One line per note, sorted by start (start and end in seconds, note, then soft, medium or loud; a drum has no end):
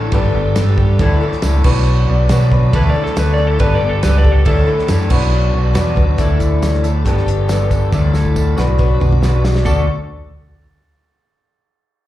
0.00 0.11 D3 medium
0.00 0.13 A3 soft
0.00 0.11 D4 medium
0.00 0.12 D4 medium
0.00 0.12 E4 medium
0.00 0.13 E4 medium
0.00 0.11 A4 medium
0.00 0.12 A4 medium
0.00 0.13 A4 medium
0.00 0.11 D5 medium
0.00 0.12 D5 medium
0.00 0.12 E5 medium
0.00 0.12 A5 medium
0.12 0.32 G1 loud
0.12 0.56 G3 medium
0.12 0.54 B3 medium
0.12 0.99 D4 medium
0.12 0.56 D4 medium
0.12 0.99 G4 medium
0.12 0.56 G4 medium
0.12 0.99 A4 medium
0.12 0.57 A4 medium
0.12 0.98 B4 medium
0.12 0.99 B4 medium
0.12 0.98 D5 medium
0.12 0.98 G5 medium
0.12 0.99 A5 medium
0.12 kick loud
0.12 ride bell medium
0.35 0.55 G1 medium
0.35 0.56 B3 medium
0.35 0.58 D4 medium
0.35 0.58 A4 medium
0.55 0.96 G2 medium
0.55 0.99 G3 medium
0.55 0.78 B3 medium
0.55 0.78 D4 medium
0.55 0.78 G4 medium
0.55 0.76 A4 medium
0.55 snare loud
0.55 ride bell medium
0.55 tambourine loud
0.77 0.99 D4 medium
0.77 1.00 G4 medium
0.77 1.00 A4 medium
0.77 kick medium
0.99 1.19 D2 loud
0.99 1.21 D3 medium
0.99 1.22 E3 medium
0.99 1.22 A3 medium
0.99 1.22 D4 medium
0.99 1.64 D4 medium
0.99 1.21 E4 loud
0.99 1.65 E4 medium
0.99 1.65 A4 medium
0.99 1.20 A4 loud
0.99 1.65 A4 medium
0.99 1.63 D5 medium
0.99 1.64 D5 medium
0.99 1.65 E5 medium
0.99 1.65 A5 medium
0.99 kick loud
0.99 ride bell medium
1.21 1.41 A3 medium
1.21 1.42 D4 medium
1.21 1.43 E4 medium
1.21 1.43 A4 medium
1.32 snare soft
1.42 1.63 C#2 medium
1.42 1.64 D3 medium
1.42 1.65 A3 medium
1.42 1.65 D4 medium
1.42 1.65 E4 medium
1.42 1.64 A4 medium
1.42 snare loud
1.42 ride bell medium
1.42 tambourine loud
1.64 2.04 B1 medium
1.64 2.31 B2 medium
1.64 2.29 F#3 medium
1.64 2.29 B3 medium
1.64 2.73 D4 medium
1.64 2.30 D4 medium
1.64 2.72 F#4 medium
1.64 2.30 F#4 medium
1.64 2.71 B4 medium
1.64 2.30 B4 medium
1.64 2.72 B4 medium
1.64 2.08 D5 medium
1.64 2.72 D5 medium
1.64 2.29 F#5 medium
1.64 2.51 B5 medium
1.64 kick loud
1.64 crash loud
2.08 2.28 B1 medium
2.08 2.30 B3 medium
2.08 2.32 D4 medium
2.08 2.31 F#4 medium
2.08 2.29 D5 medium
2.29 2.69 B2 medium
2.29 2.72 F#3 medium
2.29 2.52 B3 medium
2.29 2.52 D4 medium
2.29 2.51 F#4 medium
2.29 2.51 B4 medium
2.29 2.51 F#5 medium
2.29 snare loud
2.29 ride bell medium
2.29 tambourine loud
2.52 2.73 B3 medium
2.52 2.73 D4 medium
2.52 2.74 F#4 medium
2.52 2.73 B4 medium
2.52 2.72 B5 medium
2.52 kick loud
2.73 2.93 D2 loud
2.73 2.95 D3 loud
2.73 2.95 E3 medium
2.73 2.95 A3 loud
2.73 2.95 D4 loud
2.73 3.60 D4 medium
2.73 2.94 E4 loud
2.73 3.60 E4 medium
2.73 3.58 A4 medium
2.73 3.59 A4 medium
2.73 2.93 A4 loud
2.73 2.89 B4 loud
2.73 3.59 D5 medium
2.73 3.58 D5 medium
2.73 3.59 E5 medium
2.73 3.59 A5 medium
2.73 kick loud
2.73 ride bell medium
2.89 3.03 D5 medium
2.94 3.14 A3 medium
2.94 3.15 D4 medium
2.94 3.16 E4 medium
2.94 3.16 A4 medium
3.04 3.17 A4 medium
3.04 snare soft
3.15 3.56 D2 medium
3.15 3.59 D3 medium
3.15 3.38 A3 medium
3.15 3.38 D4 medium
3.15 3.37 E4 medium
3.15 3.37 A4 medium
3.15 3.32 B4 medium
3.15 snare loud
3.15 ride bell medium
3.15 tambourine loud
3.33 3.46 D5 medium
3.38 3.59 A3 medium
3.38 3.58 D4 medium
3.38 3.60 E4 medium
3.38 3.59 A4 medium
3.47 3.60 A4 medium
3.59 3.80 G1 loud
3.59 4.03 G3 medium
3.59 4.01 B3 medium
3.59 4.03 D4 medium
3.59 4.45 D4 medium
3.59 4.02 G4 medium
3.59 4.46 G4 medium
3.59 4.04 A4 medium
3.59 4.46 A4 medium
3.59 4.45 B4 medium
3.59 3.74 B4 medium
3.59 4.46 B4 medium
3.59 4.45 D5 medium
3.59 4.45 G5 medium
3.59 4.45 A5 loud
3.59 kick loud
3.59 ride bell medium
3.75 3.89 D5 medium
3.81 4.01 G1 medium
3.81 4.03 B3 medium
3.81 4.05 D4 medium
3.81 4.05 A4 medium
3.89 4.03 A4 medium
4.03 4.43 C#2 medium
4.03 4.45 G3 medium
4.03 4.24 B3 medium
4.03 4.25 D4 medium
4.03 4.24 G4 medium
4.03 4.23 A4 medium
4.03 4.17 B4 medium
4.03 snare loud
4.03 ride bell medium
4.03 tambourine loud
4.18 4.32 D5 medium
4.24 4.45 D4 soft
4.24 4.46 G4 medium
4.24 4.45 A4 medium
4.24 kick medium
4.32 4.46 A4 medium
4.45 4.66 D2 loud
4.45 4.67 D3 medium
4.45 4.67 E3 medium
4.45 4.68 A3 medium
4.45 4.67 D4 loud
4.45 5.09 D4 medium
4.45 5.10 E4 medium
4.45 4.66 E4 loud
4.45 5.11 A4 medium
4.45 4.66 A4 loud
4.45 5.11 A4 medium
4.45 4.89 A4 loud
4.45 5.10 D5 medium
4.45 5.09 D5 medium
4.45 5.11 E5 medium
4.45 5.11 A5 medium
4.45 kick loud
4.45 ride bell medium
4.67 4.86 A3 medium
4.67 4.87 D4 medium
4.67 4.88 E4 medium
4.67 4.88 A4 medium
4.79 snare soft
4.87 5.09 F#2 medium
4.87 5.10 D3 medium
4.87 5.10 A3 medium
4.87 5.10 D4 medium
4.87 5.10 E4 medium
4.87 5.09 A4 medium
4.87 snare loud
4.87 ride bell medium
4.87 tambourine medium
5.09 5.50 B1 medium
5.09 5.73 F#3 medium
5.09 5.72 B3 soft
5.09 6.18 D4 medium
5.09 5.73 D4 medium
5.09 5.74 F#4 medium
5.09 6.18 F#4 medium
5.09 5.75 B4 medium
5.09 6.18 B4 medium
5.09 6.17 B4 medium
5.09 6.18 D5 medium
5.09 6.16 D5 medium
5.09 6.17 F#5 medium
5.09 6.18 B5 medium
5.09 kick loud
5.09 crash loud
5.14 5.77 B2 medium
5.54 5.74 B1 loud
5.54 5.75 B3 medium
5.54 5.75 D4 medium
5.54 5.76 F#4 medium
5.74 5.95 E2 medium
5.74 6.17 F#3 medium
5.74 5.96 B3 medium
5.74 5.96 D4 medium
5.74 5.96 F#4 medium
5.74 5.95 B4 medium
5.74 snare loud
5.74 ride bell medium
5.74 tambourine medium
5.96 6.17 D2 medium
5.96 6.19 B3 soft
5.96 6.18 D4 medium
5.96 6.19 F#4 medium
5.96 6.18 B4 medium
5.96 kick medium
6.17 7.07 D2 loud
6.17 6.84 D3 medium
6.17 6.84 E3 medium
6.17 6.84 A3 medium
6.17 7.04 D4 medium
6.17 6.85 D4 medium
6.17 7.05 E4 medium
6.17 6.83 E4 medium
6.17 7.04 A4 medium
6.17 6.82 A4 medium
6.17 7.03 D5 medium
6.17 7.05 D5 medium
6.17 7.04 E5 medium
6.17 7.04 A5 medium
6.17 kick loud
6.17 closed hi-hat medium
6.17 tambourine medium
6.40 6.61 A3 medium
6.40 6.62 E4 medium
6.40 6.63 A4 medium
6.40 kick medium
6.40 closed hi-hat medium
6.40 tambourine medium
6.62 7.04 D3 medium
6.62 6.85 A3 medium
6.62 6.84 E4 medium
6.62 6.82 A4 medium
6.62 snare loud
6.62 closed hi-hat medium
6.62 tambourine loud
6.73 snare soft
6.83 7.05 A3 soft
6.83 7.05 D4 medium
6.83 7.06 E4 medium
6.83 7.05 A4 medium
6.83 closed hi-hat medium
6.83 tambourine medium
7.05 7.25 G1 medium
7.05 7.27 G3 medium
7.05 7.28 B3 medium
7.05 7.91 D4 medium
7.05 7.27 D4 medium
7.05 7.91 G4 medium
7.05 7.26 G4 medium
7.05 7.92 A4 medium
7.05 7.25 A4 medium
7.05 7.92 B4 medium
7.05 7.91 B4 medium
7.05 7.91 G5 medium
7.05 7.91 A5 medium
7.05 kick loud
7.05 closed hi-hat medium
7.05 tambourine soft
7.17 snare soft
7.26 7.88 G1 medium
7.26 7.48 D4 soft
7.26 7.48 G4 soft
7.26 7.49 A4 medium
7.26 closed hi-hat medium
7.26 tambourine soft
7.48 7.91 G3 medium
7.48 7.92 B3 medium
7.48 7.93 D4 medium
7.48 7.93 G4 medium
7.48 7.92 A4 medium
7.48 snare loud
7.48 closed hi-hat loud
7.48 tambourine loud
7.70 7.93 B3 medium
7.70 7.93 D4 medium
7.70 7.91 A4 medium
7.70 kick medium
7.70 closed hi-hat medium
7.70 tambourine medium
7.92 8.54 D2 loud
7.92 8.14 D3 medium
7.92 8.14 E3 medium
7.92 8.14 A3 medium
7.92 8.13 D4 medium
7.92 8.57 D4 medium
7.92 8.57 E4 medium
7.92 8.13 E4 medium
7.92 8.57 A4 medium
7.92 8.12 A4 loud
7.92 8.55 D5 medium
7.92 8.57 D5 medium
7.92 8.58 E5 medium
7.92 8.58 A5 medium
7.92 kick loud
7.92 tambourine medium
8.13 8.58 A3 soft
8.13 8.57 D4 soft
8.13 8.57 E4 medium
8.13 8.56 A4 medium
8.13 snare medium
8.13 tambourine medium
8.25 kick medium
8.35 8.56 D3 medium
8.35 8.56 A3 medium
8.35 8.57 E4 medium
8.35 8.56 A4 medium
8.35 kick medium
8.35 tambourine loud
8.56 8.97 B1 medium
8.56 9.20 B2 medium
8.56 9.21 F#3 medium
8.56 8.77 B3 soft
8.56 8.78 D4 soft
8.56 9.64 D4 medium
8.56 8.78 F#4 medium
8.56 9.64 F#4 medium
8.56 8.79 B4 medium
8.56 9.65 B4 medium
8.56 9.63 D5 medium
8.56 9.64 D5 medium
8.56 9.64 F#5 medium
8.56 9.64 B5 medium
8.56 snare medium
8.56 tambourine medium
8.68 mid tom medium
8.78 9.01 B2 medium
8.78 9.01 F#3 medium
8.78 9.01 B3 loud
8.78 9.00 D4 medium
8.78 9.00 F#4 medium
8.78 8.99 B4 medium
8.78 kick medium
8.78 tambourine soft
9.00 9.62 B1 medium
9.00 9.21 B3 soft
9.00 9.21 D4 medium
9.00 9.22 F#4 medium
9.00 9.22 B4 medium
9.00 mid tom medium
9.00 tambourine soft
9.12 mid tom medium
9.21 9.64 B2 medium
9.21 9.64 F#3 medium
9.21 9.65 B3 medium
9.21 9.65 D4 medium
9.21 9.65 F#4 medium
9.21 9.67 B4 medium
9.21 snare loud
9.21 tambourine loud
9.45 9.66 B3 medium
9.45 9.65 D4 medium
9.45 9.65 F#4 medium
9.45 snare loud
9.45 tambourine medium
9.55 snare medium
9.64 9.86 D2 loud
9.64 9.83 D3 medium
9.64 9.83 A3 medium
9.64 9.96 D4 medium
9.64 9.83 D4 medium
9.64 9.96 F#4 medium
9.64 9.83 F#4 medium
9.64 9.86 A4 medium
9.64 9.96 A4 medium
9.64 9.84 A4 medium
9.64 9.96 D5 medium
9.64 9.86 D5 medium
9.64 9.86 F#5 medium
9.64 9.86 A5 medium
9.64 kick loud
9.64 floor tom loud
9.64 tambourine medium